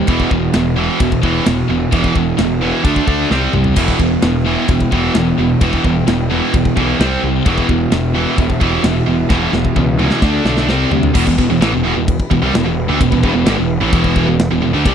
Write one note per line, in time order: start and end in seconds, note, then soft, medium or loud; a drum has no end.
0.07 0.24 E1 loud
0.07 0.29 E2 medium
0.07 0.30 B2 loud
0.07 0.30 E3 loud
0.07 kick loud
0.07 crash medium
0.20 kick medium
0.30 0.47 E1 medium
0.30 0.52 E2 medium
0.30 0.52 B2 medium
0.30 kick medium
0.53 0.87 E1 medium
0.53 0.75 E2 medium
0.53 0.75 B2 medium
0.53 snare loud
0.53 crash medium
0.76 0.98 E2 loud
0.76 0.98 B2 loud
0.76 0.99 E3 loud
0.99 1.17 E1 medium
0.99 1.21 E2 medium
0.99 1.21 B2 medium
0.99 kick loud
0.99 crash medium
1.12 kick medium
1.22 1.39 E1 medium
1.22 1.44 E2 medium
1.22 1.44 B2 medium
1.22 1.45 E3 loud
1.22 kick medium
1.45 1.63 E1 loud
1.45 1.66 E2 medium
1.45 1.67 B2 medium
1.45 1.92 E3 medium
1.45 snare loud
1.45 crash medium
1.68 1.86 E1 medium
1.68 1.89 E2 medium
1.68 1.90 B2 medium
1.91 2.09 E1 loud
1.91 2.13 E2 medium
1.91 2.13 B2 loud
1.91 2.14 E3 medium
1.91 kick loud
1.91 crash medium
2.04 kick medium
2.14 2.32 E1 medium
2.14 2.35 E2 medium
2.14 2.36 B2 medium
2.14 kick medium
2.37 2.71 E1 loud
2.37 2.58 E2 medium
2.37 2.59 B2 loud
2.37 snare loud
2.37 crash medium
2.61 2.83 E2 loud
2.61 2.83 B2 loud
2.61 2.83 E3 loud
2.84 3.01 D2 medium
2.84 3.06 D3 medium
2.84 3.06 A3 loud
2.84 3.06 D4 medium
2.84 kick loud
2.84 crash medium
2.96 kick medium
3.07 3.24 D2 medium
3.07 3.29 D3 loud
3.07 3.29 A3 medium
3.07 3.29 D4 loud
3.07 kick medium
3.31 3.47 C2 medium
3.31 3.52 C3 medium
3.31 3.53 G3 medium
3.31 3.53 C4 loud
3.31 snare medium
3.53 3.70 C2 medium
3.53 3.74 C3 medium
3.53 3.75 G3 medium
3.53 mid tom medium
3.64 floor tom loud
3.76 3.93 E1 loud
3.76 3.98 E2 loud
3.76 3.98 B2 loud
3.76 3.99 E3 loud
3.76 7.43 G3 medium
3.76 6.97 E4 medium
3.76 6.97 B4 medium
3.76 7.42 G5 medium
3.76 kick loud
3.76 crash medium
3.88 kick medium
3.99 4.16 E1 medium
3.99 4.20 E2 medium
3.99 4.20 B2 medium
3.99 kick medium
4.22 4.55 E1 loud
4.22 4.43 E2 medium
4.22 4.43 B2 medium
4.22 snare loud
4.22 crash medium
4.45 4.66 E2 loud
4.45 4.67 B2 loud
4.45 4.67 E3 loud
4.68 4.85 E1 medium
4.68 4.89 E2 medium
4.68 4.89 B2 medium
4.68 kick loud
4.68 crash medium
4.80 kick medium
4.91 5.08 E1 medium
4.91 5.13 E2 medium
4.91 5.14 B2 loud
4.91 5.14 E3 loud
4.91 kick medium
5.15 5.32 E1 medium
5.15 5.36 E2 medium
5.15 5.36 B2 medium
5.15 5.61 E3 medium
5.15 snare loud
5.15 crash medium
5.38 5.54 E1 medium
5.38 5.59 E2 medium
5.38 5.59 B2 medium
5.61 5.77 E1 loud
5.61 5.83 E2 medium
5.61 5.83 B2 loud
5.61 5.83 E3 loud
5.61 kick loud
5.61 crash medium
5.73 kick medium
5.84 6.01 E1 medium
5.84 6.05 E2 medium
5.84 6.05 B2 medium
5.84 kick medium
6.07 6.40 E1 medium
6.07 6.28 E2 medium
6.07 6.28 B2 loud
6.07 snare loud
6.07 crash medium
6.30 6.51 E2 loud
6.30 6.52 B2 loud
6.30 6.52 E3 loud
6.53 6.70 E1 medium
6.53 6.74 E2 medium
6.53 6.74 B2 medium
6.53 kick loud
6.53 crash medium
6.65 kick medium
6.76 6.93 B1 medium
6.76 6.98 E2 medium
6.76 6.98 B2 loud
6.76 6.98 E3 loud
6.76 kick medium
6.99 7.16 C2 loud
6.99 7.20 C3 loud
6.99 7.21 G3 loud
6.99 7.21 C4 loud
6.99 7.46 C4 medium
6.99 7.46 C5 medium
6.99 snare loud
6.99 crash medium
7.21 7.39 C2 medium
7.21 7.43 C3 medium
7.21 7.43 G3 medium
7.45 7.62 E1 loud
7.45 7.67 E2 medium
7.45 7.67 B2 loud
7.45 7.67 E3 loud
7.45 10.21 E3 medium
7.45 10.21 B3 medium
7.45 10.21 G4 medium
7.45 10.21 E5 medium
7.45 kick loud
7.45 crash medium
7.58 kick medium
7.68 7.85 E1 medium
7.68 7.89 E2 medium
7.68 7.89 B2 medium
7.68 kick medium
7.92 8.25 E1 medium
7.92 8.13 E2 medium
7.92 8.13 B2 loud
7.92 snare loud
7.92 crash medium
8.14 8.36 E2 loud
8.14 8.36 B2 loud
8.14 8.37 E3 loud
8.37 8.54 E1 medium
8.37 8.58 E2 medium
8.37 8.58 B2 medium
8.37 kick loud
8.37 crash medium
8.50 kick medium
8.61 8.77 E1 medium
8.61 8.82 E2 loud
8.61 8.83 B2 loud
8.61 8.83 E3 loud
8.61 kick medium
8.84 9.00 E1 loud
8.84 9.05 E2 medium
8.84 9.05 B2 medium
8.84 9.30 E3 medium
8.84 snare loud
8.84 crash medium
9.06 9.24 E1 medium
9.06 9.28 E2 medium
9.06 9.28 B2 medium
9.30 9.47 E1 loud
9.30 9.52 E2 medium
9.30 9.52 B2 loud
9.30 9.52 E3 loud
9.30 kick loud
9.30 snare medium
9.53 9.69 E1 medium
9.53 9.74 E2 medium
9.53 9.74 B2 medium
9.53 snare medium
9.65 kick medium
9.76 10.09 C#2 loud
9.76 9.97 E2 medium
9.76 9.97 B2 loud
9.76 kick medium
9.99 10.21 E2 medium
9.99 10.21 B2 loud
9.99 10.21 E3 loud
9.99 mid tom medium
10.11 snare medium
10.22 10.39 D2 medium
10.22 10.44 D3 medium
10.22 10.68 D3 medium
10.22 10.44 A3 loud
10.22 10.68 A3 medium
10.22 10.44 D4 loud
10.22 10.68 A4 medium
10.22 10.68 D5 medium
10.22 kick loud
10.22 snare medium
10.45 10.68 B1 medium
10.45 10.67 D3 loud
10.45 10.68 A3 medium
10.45 10.68 D4 loud
10.45 snare loud
10.57 snare medium
10.68 10.85 C2 loud
10.68 10.91 C3 loud
10.68 11.15 C3 medium
10.68 10.91 G3 loud
10.68 11.15 G3 medium
10.68 10.91 C4 loud
10.68 11.15 G4 medium
10.68 11.15 C5 medium
10.68 snare loud
10.91 11.08 D2 medium
10.91 11.13 C3 medium
10.91 11.13 G3 medium
10.91 floor tom medium
11.03 floor tom loud
11.15 11.26 E1 loud
11.15 11.25 E2 loud
11.15 11.26 B2 loud
11.15 14.82 E3 medium
11.15 14.82 B3 medium
11.15 14.82 G4 medium
11.15 14.82 B4 medium
11.15 kick loud
11.15 crash loud
11.15 crash medium
11.26 11.38 E1 medium
11.26 11.37 E2 medium
11.26 11.37 B2 medium
11.26 kick medium
11.38 11.49 E1 medium
11.38 11.48 E2 medium
11.38 11.49 B2 medium
11.38 kick medium
11.50 11.60 E1 medium
11.50 11.61 E2 medium
11.50 11.61 B2 medium
11.61 11.72 A1 loud
11.61 11.72 A2 medium
11.61 11.72 E3 loud
11.61 snare loud
11.61 crash medium
11.73 11.84 E1 medium
11.73 11.83 E2 medium
11.73 11.84 B2 medium
11.84 11.95 E1 loud
11.84 11.95 E2 loud
11.84 11.95 B2 loud
11.96 12.17 E1 medium
11.96 12.14 E2 medium
11.96 12.15 B2 medium
12.08 kick loud
12.08 crash medium
12.20 kick medium
12.31 12.41 E1 medium
12.31 12.42 E2 medium
12.31 12.41 B2 medium
12.31 kick medium
12.42 12.53 C2 loud
12.42 12.53 C3 medium
12.42 12.53 G3 loud
12.54 12.65 E1 medium
12.54 12.63 E2 medium
12.54 12.64 B2 medium
12.54 snare loud
12.54 crash medium
12.64 12.87 E1 medium
12.64 12.83 E2 medium
12.64 12.84 B2 medium
12.88 13.00 D2 loud
12.88 12.99 D3 medium
12.88 13.00 A3 loud
13.00 13.11 E1 medium
13.00 13.10 E2 medium
13.00 13.11 B2 medium
13.00 kick loud
13.00 crash medium
13.11 13.23 E1 medium
13.11 13.22 E2 medium
13.11 13.22 B2 medium
13.11 kick medium
13.23 13.33 E1 medium
13.23 13.34 E2 medium
13.23 13.34 B2 loud
13.23 kick medium
13.34 13.45 E1 medium
13.34 13.45 E2 medium
13.34 13.46 B2 medium
13.46 13.57 G1 loud
13.46 13.57 G2 loud
13.46 13.57 D3 loud
13.46 snare loud
13.46 crash medium
13.58 13.79 E1 medium
13.58 13.76 E2 medium
13.58 13.77 B2 medium
13.81 13.92 A1 loud
13.81 13.92 A2 medium
13.81 13.92 E3 loud
13.92 14.25 E1 medium
13.92 14.26 E2 medium
13.92 14.26 B2 loud
13.92 14.27 E3 loud
13.92 kick loud
13.92 crash medium
14.04 kick medium
14.16 kick medium
14.27 14.49 E1 medium
14.27 14.46 E2 medium
14.27 14.46 B2 medium
14.39 snare loud
14.39 crash medium
14.51 14.61 E1 medium
14.51 14.61 E2 medium
14.51 14.61 B2 medium
14.62 14.73 E1 medium
14.62 14.74 E2 medium
14.62 14.73 B2 medium
14.73 14.85 D2 loud
14.73 14.84 D3 loud
14.73 14.85 A3 loud
14.85 14.95 C2 medium
14.85 14.95 C3 medium
14.85 14.95 G3 medium
14.85 14.95 G3 loud
14.85 14.95 G4 medium
14.85 14.95 C5 medium
14.85 kick loud
14.85 crash medium